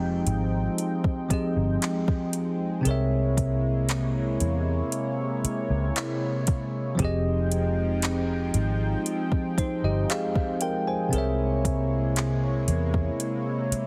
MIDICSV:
0, 0, Header, 1, 6, 480
1, 0, Start_track
1, 0, Key_signature, -4, "minor"
1, 0, Tempo, 1034483
1, 1323, Time_signature, 4, 2, 24, 8
1, 6435, End_track
2, 0, Start_track
2, 0, Title_t, "Tine electric piano"
2, 0, Program_c, 0, 4
2, 0, Control_c, 0, 64, 127
2, 0, Note_on_c, 0, 53, 75
2, 0, Note_on_c, 0, 60, 65
2, 0, Note_on_c, 0, 67, 70
2, 0, Note_on_c, 0, 68, 71
2, 0, Note_on_c, 0, 75, 84
2, 575, Note_off_c, 0, 53, 0
2, 581, Note_off_c, 0, 60, 0
2, 586, Note_off_c, 0, 67, 0
2, 592, Note_off_c, 0, 68, 0
2, 597, Note_off_c, 0, 75, 0
2, 597, Note_on_c, 0, 53, 54
2, 603, Note_on_c, 0, 60, 52
2, 608, Note_on_c, 0, 67, 49
2, 614, Note_on_c, 0, 68, 52
2, 620, Note_on_c, 0, 75, 61
2, 1304, Note_on_c, 0, 48, 79
2, 1308, Note_off_c, 0, 60, 0
2, 1313, Note_on_c, 0, 60, 71
2, 1317, Note_off_c, 0, 68, 0
2, 1320, Note_off_c, 0, 53, 0
2, 1322, Note_on_c, 0, 68, 68
2, 1326, Note_off_c, 0, 67, 0
2, 1329, Control_c, 0, 64, 0
2, 1331, Note_off_c, 0, 75, 0
2, 1331, Note_on_c, 0, 70, 73
2, 1340, Note_on_c, 0, 73, 70
2, 1349, Note_on_c, 0, 76, 87
2, 1407, Control_c, 0, 64, 127
2, 3215, Note_off_c, 0, 48, 0
2, 3220, Note_off_c, 0, 60, 0
2, 3224, Note_off_c, 0, 68, 0
2, 3225, Note_on_c, 0, 53, 78
2, 3229, Note_off_c, 0, 70, 0
2, 3233, Note_off_c, 0, 73, 0
2, 3237, Note_on_c, 0, 60, 71
2, 3238, Note_off_c, 0, 76, 0
2, 3247, Note_on_c, 0, 67, 71
2, 3249, Control_c, 0, 64, 0
2, 3259, Note_on_c, 0, 68, 71
2, 3269, Note_on_c, 0, 75, 85
2, 3336, Control_c, 0, 64, 127
2, 4427, Note_off_c, 0, 67, 0
2, 4432, Note_off_c, 0, 68, 0
2, 4438, Note_off_c, 0, 75, 0
2, 4448, Note_on_c, 0, 72, 66
2, 4451, Note_on_c, 0, 63, 56
2, 4560, Note_off_c, 0, 72, 0
2, 4561, Note_off_c, 0, 63, 0
2, 4567, Note_on_c, 0, 75, 69
2, 4570, Note_on_c, 0, 67, 61
2, 4656, Note_off_c, 0, 53, 0
2, 4661, Note_off_c, 0, 60, 0
2, 4679, Note_off_c, 0, 75, 0
2, 4681, Note_off_c, 0, 67, 0
2, 4688, Note_on_c, 0, 77, 74
2, 4691, Note_on_c, 0, 68, 61
2, 4914, Note_off_c, 0, 77, 0
2, 4915, Note_off_c, 0, 68, 0
2, 4927, Note_on_c, 0, 79, 75
2, 4929, Note_on_c, 0, 70, 64
2, 5039, Note_off_c, 0, 79, 0
2, 5041, Note_off_c, 0, 70, 0
2, 5046, Note_on_c, 0, 80, 63
2, 5048, Note_on_c, 0, 72, 53
2, 5144, Note_on_c, 0, 48, 75
2, 5153, Note_on_c, 0, 60, 67
2, 5162, Note_on_c, 0, 68, 66
2, 5170, Control_c, 0, 64, 0
2, 5171, Note_on_c, 0, 70, 72
2, 5179, Note_on_c, 0, 73, 66
2, 5189, Note_on_c, 0, 76, 80
2, 5246, Control_c, 0, 64, 127
2, 5273, Note_off_c, 0, 80, 0
2, 5274, Note_off_c, 0, 72, 0
2, 6435, Note_off_c, 0, 48, 0
2, 6435, Note_off_c, 0, 60, 0
2, 6435, Note_off_c, 0, 68, 0
2, 6435, Note_off_c, 0, 70, 0
2, 6435, Note_off_c, 0, 73, 0
2, 6435, Note_off_c, 0, 76, 0
2, 6435, End_track
3, 0, Start_track
3, 0, Title_t, "Analog synth pad"
3, 0, Program_c, 1, 89
3, 0, Note_on_c, 1, 53, 78
3, 0, Note_on_c, 1, 56, 96
3, 0, Note_on_c, 1, 60, 78
3, 0, Note_on_c, 1, 63, 76
3, 0, Note_on_c, 1, 79, 80
3, 1304, Note_off_c, 1, 53, 0
3, 1304, Note_off_c, 1, 63, 0
3, 1304, Note_off_c, 1, 79, 0
3, 1305, Note_off_c, 1, 60, 0
3, 1324, Note_on_c, 1, 58, 78
3, 1324, Note_on_c, 1, 64, 76
3, 1324, Note_on_c, 1, 73, 81
3, 1325, Note_on_c, 1, 48, 82
3, 3224, Note_off_c, 1, 56, 0
3, 3225, Note_off_c, 1, 48, 0
3, 3225, Note_off_c, 1, 58, 0
3, 3225, Note_off_c, 1, 64, 0
3, 3225, Note_off_c, 1, 73, 0
3, 3243, Note_on_c, 1, 53, 83
3, 3243, Note_on_c, 1, 79, 81
3, 3244, Note_on_c, 1, 56, 90
3, 3244, Note_on_c, 1, 60, 74
3, 3244, Note_on_c, 1, 63, 75
3, 5145, Note_off_c, 1, 53, 0
3, 5145, Note_off_c, 1, 60, 0
3, 5145, Note_off_c, 1, 63, 0
3, 5145, Note_off_c, 1, 79, 0
3, 5163, Note_on_c, 1, 48, 82
3, 5163, Note_on_c, 1, 64, 80
3, 5163, Note_on_c, 1, 73, 79
3, 5164, Note_on_c, 1, 58, 74
3, 6435, Note_off_c, 1, 48, 0
3, 6435, Note_off_c, 1, 56, 0
3, 6435, Note_off_c, 1, 58, 0
3, 6435, Note_off_c, 1, 64, 0
3, 6435, Note_off_c, 1, 73, 0
3, 6435, End_track
4, 0, Start_track
4, 0, Title_t, "Fingered electric bass"
4, 0, Program_c, 2, 33
4, 0, Note_on_c, 2, 29, 97
4, 105, Note_off_c, 2, 29, 0
4, 124, Note_on_c, 2, 32, 94
4, 309, Note_off_c, 2, 32, 0
4, 725, Note_on_c, 2, 31, 94
4, 817, Note_off_c, 2, 31, 0
4, 1325, Note_on_c, 2, 36, 106
4, 2026, Note_off_c, 2, 36, 0
4, 2044, Note_on_c, 2, 40, 94
4, 2229, Note_off_c, 2, 40, 0
4, 2644, Note_on_c, 2, 37, 92
4, 2736, Note_off_c, 2, 37, 0
4, 3243, Note_on_c, 2, 29, 101
4, 3945, Note_off_c, 2, 29, 0
4, 3964, Note_on_c, 2, 32, 91
4, 4149, Note_off_c, 2, 32, 0
4, 4563, Note_on_c, 2, 31, 99
4, 4656, Note_off_c, 2, 31, 0
4, 5164, Note_on_c, 2, 36, 107
4, 5865, Note_off_c, 2, 36, 0
4, 5883, Note_on_c, 2, 40, 93
4, 6069, Note_off_c, 2, 40, 0
4, 6435, End_track
5, 0, Start_track
5, 0, Title_t, "Muted fingered electric bass strokes"
5, 605, Note_on_c, 9, 29, 50
5, 651, Note_off_c, 9, 29, 0
5, 2524, Note_on_c, 9, 29, 47
5, 2571, Note_off_c, 9, 29, 0
5, 4444, Note_on_c, 9, 29, 47
5, 4490, Note_off_c, 9, 29, 0
5, 6363, Note_on_c, 9, 29, 46
5, 6410, Note_off_c, 9, 29, 0
5, 6435, End_track
6, 0, Start_track
6, 0, Title_t, "Drums"
6, 123, Note_on_c, 9, 42, 57
6, 170, Note_off_c, 9, 42, 0
6, 363, Note_on_c, 9, 42, 68
6, 410, Note_off_c, 9, 42, 0
6, 484, Note_on_c, 9, 36, 91
6, 530, Note_off_c, 9, 36, 0
6, 604, Note_on_c, 9, 36, 89
6, 606, Note_on_c, 9, 42, 76
6, 651, Note_off_c, 9, 36, 0
6, 652, Note_off_c, 9, 42, 0
6, 845, Note_on_c, 9, 42, 78
6, 849, Note_on_c, 9, 39, 111
6, 891, Note_off_c, 9, 42, 0
6, 895, Note_off_c, 9, 39, 0
6, 965, Note_on_c, 9, 36, 104
6, 1011, Note_off_c, 9, 36, 0
6, 1082, Note_on_c, 9, 42, 77
6, 1128, Note_off_c, 9, 42, 0
6, 1324, Note_on_c, 9, 42, 73
6, 1370, Note_off_c, 9, 42, 0
6, 1565, Note_on_c, 9, 36, 91
6, 1567, Note_on_c, 9, 42, 76
6, 1612, Note_off_c, 9, 36, 0
6, 1613, Note_off_c, 9, 42, 0
6, 1803, Note_on_c, 9, 42, 79
6, 1810, Note_on_c, 9, 39, 115
6, 1850, Note_off_c, 9, 42, 0
6, 1856, Note_off_c, 9, 39, 0
6, 2043, Note_on_c, 9, 42, 59
6, 2090, Note_off_c, 9, 42, 0
6, 2284, Note_on_c, 9, 42, 74
6, 2330, Note_off_c, 9, 42, 0
6, 2527, Note_on_c, 9, 42, 76
6, 2573, Note_off_c, 9, 42, 0
6, 2765, Note_on_c, 9, 42, 81
6, 2769, Note_on_c, 9, 39, 107
6, 2812, Note_off_c, 9, 42, 0
6, 2816, Note_off_c, 9, 39, 0
6, 3002, Note_on_c, 9, 42, 73
6, 3005, Note_on_c, 9, 36, 98
6, 3048, Note_off_c, 9, 42, 0
6, 3052, Note_off_c, 9, 36, 0
6, 3243, Note_on_c, 9, 36, 115
6, 3243, Note_on_c, 9, 42, 68
6, 3289, Note_off_c, 9, 42, 0
6, 3290, Note_off_c, 9, 36, 0
6, 3487, Note_on_c, 9, 42, 75
6, 3533, Note_off_c, 9, 42, 0
6, 3723, Note_on_c, 9, 42, 81
6, 3729, Note_on_c, 9, 39, 112
6, 3769, Note_off_c, 9, 42, 0
6, 3776, Note_off_c, 9, 39, 0
6, 3963, Note_on_c, 9, 42, 57
6, 4009, Note_off_c, 9, 42, 0
6, 4204, Note_on_c, 9, 42, 69
6, 4250, Note_off_c, 9, 42, 0
6, 4323, Note_on_c, 9, 36, 87
6, 4369, Note_off_c, 9, 36, 0
6, 4444, Note_on_c, 9, 36, 92
6, 4446, Note_on_c, 9, 42, 79
6, 4490, Note_off_c, 9, 36, 0
6, 4493, Note_off_c, 9, 42, 0
6, 4685, Note_on_c, 9, 42, 75
6, 4690, Note_on_c, 9, 39, 115
6, 4732, Note_off_c, 9, 42, 0
6, 4736, Note_off_c, 9, 39, 0
6, 4804, Note_on_c, 9, 36, 108
6, 4851, Note_off_c, 9, 36, 0
6, 4921, Note_on_c, 9, 42, 78
6, 4968, Note_off_c, 9, 42, 0
6, 5163, Note_on_c, 9, 42, 70
6, 5210, Note_off_c, 9, 42, 0
6, 5405, Note_on_c, 9, 36, 92
6, 5406, Note_on_c, 9, 42, 77
6, 5451, Note_off_c, 9, 36, 0
6, 5453, Note_off_c, 9, 42, 0
6, 5643, Note_on_c, 9, 42, 81
6, 5649, Note_on_c, 9, 39, 115
6, 5689, Note_off_c, 9, 42, 0
6, 5696, Note_off_c, 9, 39, 0
6, 5883, Note_on_c, 9, 42, 59
6, 5929, Note_off_c, 9, 42, 0
6, 6004, Note_on_c, 9, 36, 87
6, 6050, Note_off_c, 9, 36, 0
6, 6124, Note_on_c, 9, 42, 72
6, 6171, Note_off_c, 9, 42, 0
6, 6367, Note_on_c, 9, 42, 77
6, 6413, Note_off_c, 9, 42, 0
6, 6435, End_track
0, 0, End_of_file